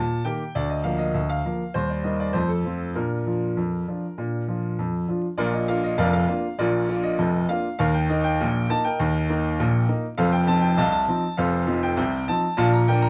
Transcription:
Already playing: A#2 A5
0.25 D#3 A#3 G4 G5
0.55 D2 D5
0.69 D#5
0.84 F3 A#3 A#4 F5
0.98 D#5
1.14 D2
1.29 F5
1.45 F3 A#3 A#4
1.74 D#2 G3 C5
1.90 D5
2.04 G3 D#4 A#4 D#5
2.20 D5
2.33 F2 A3 C5
2.48 A4
2.65 F3 C4 F4
2.95 A#2 D4 A#4
3.26 F3 D4 F4
3.57 F2
3.88 F3 D4 F4
4.18 A#2 D4
4.48 F3 D4 F4
4.79 F2
5.08 F3 D4 F4
5.38 A#1 A#2 F4 A#4 D5
5.53 D#5
5.68 A#3 D4 F4 F5
5.84 D#5
5.98 F1 F2 A#4 D5 F5
6.13 F5
6.28 A#3 D4 F4
6.58 A#1 A#2 F4 A#4 D5
6.88 A#3 D4 F4
7.03 D#5
7.19 F1 F2
7.49 A#3 D4 F4 F5
7.79 D#2 D#3 A#4 F5
7.94 G5
8.09 A#3 D#4 D#5
8.24 G5
8.41 A#1 A#2
8.70 A#3 D#4 A5
8.84 A#4 D#5 G5
9.00 D#2 D#3
9.30 A#3 D#4
9.59 A#1 A#2
9.89 A#3 D#4
10.18 F1 F2 A4 C5 F5
10.32 G5
10.47 F3 C4 D#4 A5
10.62 G5
10.77 C2 C3 D#5 F5 A5
10.91 A5
11.08 F3 C4 D#4
11.37 F1 F2 A4 C5 F5
11.67 F3 C4 D#4
11.83 G5
11.97 C2 C3
12.28 F3 C4 D#4 A5
12.57 A#1 A#2 D5 F5 A5
12.73 A#5
12.88 F3 A#3 D4 G5
13.02 A#5

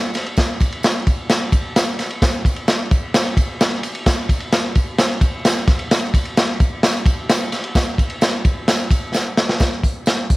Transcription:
0.14 snare, ride, tambourine
0.26 ride
0.37 kick, snare, ride, tambourine
0.60 kick, ride, tambourine
0.72 ride
0.83 snare, ride, tambourine
1.07 kick, ride, tambourine
1.30 snare, ride, tambourine
1.52 kick, ride, tambourine
1.76 snare, ride, tambourine
1.99 snare, ride, tambourine
2.10 ride
2.22 kick, snare, ride, tambourine
2.45 kick, ride, tambourine
2.56 ride
2.68 snare, ride, tambourine
2.91 kick, ride, tambourine
3.14 snare, ride, tambourine
3.37 kick, ride, tambourine
3.61 snare, ride, tambourine
3.83 ride, tambourine
3.95 ride
4.06 kick, snare, ride, tambourine
4.29 kick, ride, tambourine
4.40 ride
4.52 snare, ride, tambourine
4.75 kick, ride, tambourine
4.98 snare, ride, tambourine
5.21 kick, ride, tambourine
5.45 snare, ride, tambourine
5.68 kick, snare, ride, tambourine
5.79 ride
5.91 snare, ride, tambourine
6.14 kick, ride, tambourine
6.25 ride
6.37 snare, ride, tambourine
6.60 kick, ride, tambourine
6.83 snare, ride, tambourine
7.06 kick, ride, tambourine
7.29 snare, ride, tambourine
7.52 snare, ride, tambourine
7.64 ride
7.75 kick, snare, ride, tambourine
7.98 kick, ride, tambourine
8.10 ride
8.21 snare, ride, tambourine
8.45 kick, ride, tambourine
8.68 snare, ride, tambourine
8.91 kick, ride, tambourine
9.14 snare, tambourine
9.37 snare, tambourine
9.49 snare
9.60 kick, snare, closed hi-hat, tambourine
9.83 kick, closed hi-hat, tambourine
10.06 snare, closed hi-hat, tambourine
10.30 kick, closed hi-hat, tambourine

